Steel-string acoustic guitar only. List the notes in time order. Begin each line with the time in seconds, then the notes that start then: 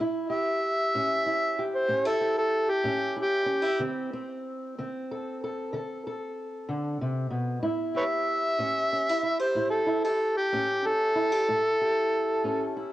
0.00 A2 E4
0.30 G4
0.95 A2 C#4
1.26 E4
1.59 G4
1.88 A2 C#4
2.05 E4
2.21 G4
2.84 A2 C#4
3.16 E4
3.46 C#4
3.62 E4
3.79 D3 C4
4.13 C4
4.78 D3 C4
5.11 A4
5.44 A4
5.73 D3 A4
6.07 A4
6.69 D3
7.01 C3
7.30 B2
7.62 A2 E4
7.94 G4
8.59 A2 C#4
8.92 C#4
9.09 E4
9.23 E4
9.40 G4
9.55 A2 E4
9.87 E4
10.05 G4
10.53 A2 C#4
10.86 E4
11.15 E4
11.32 G4
11.48 A2 E4
11.81 G4
12.44 A2 C#4
12.77 E4